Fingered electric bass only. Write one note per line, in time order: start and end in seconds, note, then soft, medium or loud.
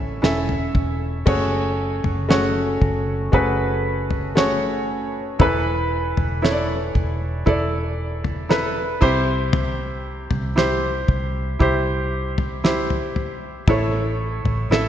0.00 0.19 A1 loud
0.23 0.71 E1 medium
0.75 1.23 E1 medium
1.27 2.00 F#1 loud
2.04 2.77 F#1 medium
2.82 3.30 F#1 loud
3.33 5.36 F#1 loud
5.40 6.13 E1 loud
6.18 6.91 E1 medium
6.95 7.43 E1 medium
7.47 8.98 E1 medium
9.02 10.27 C2 loud
10.31 11.05 C2 medium
11.09 11.57 C2 loud
11.60 13.63 C2 loud
13.68 14.41 A1 loud
14.45 14.69 A1 medium
14.70 14.88 A1 loud